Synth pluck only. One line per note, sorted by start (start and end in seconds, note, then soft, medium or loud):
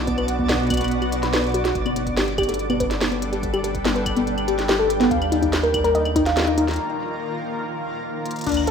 0.07 0.16 B3 medium
0.18 0.26 B4 medium
0.39 0.49 B3 loud
0.49 0.54 D5 medium
0.70 0.80 B3 medium
0.81 0.89 B3 medium
1.02 1.07 F#4 medium
1.23 1.33 B5 medium
1.33 1.43 B4 medium
1.54 1.63 F#4 medium
1.65 1.73 F#4 medium
1.86 1.95 B3 medium
1.96 2.05 B3 medium
2.17 2.22 G4 medium
2.38 2.43 G4 loud
2.49 2.57 A4 medium
2.70 2.80 B3 loud
2.80 2.85 B4 medium
3.01 3.10 B3 medium
3.12 3.20 B3 medium
3.33 3.38 G4 medium
3.54 3.59 G4 loud
3.64 3.73 A4 medium
3.85 3.95 B3 loud
3.96 4.01 B4 medium
4.16 4.26 B3 medium
4.27 4.36 B3 medium
4.48 4.53 G4 medium
4.69 4.74 G4 loud
4.79 4.88 A4 medium
5.00 5.10 B3 loud
5.11 5.16 F5 medium
5.32 5.41 D#4 medium
5.42 5.51 D#4 medium
5.63 5.69 A#4 medium
5.84 5.90 A#4 loud
5.95 6.03 D#5 medium
6.16 6.26 D#4 loud
6.26 6.31 F5 medium
6.47 6.56 D#4 medium
6.58 6.66 D#4 medium
8.46 8.55 D4 medium
8.68 8.71 A4 medium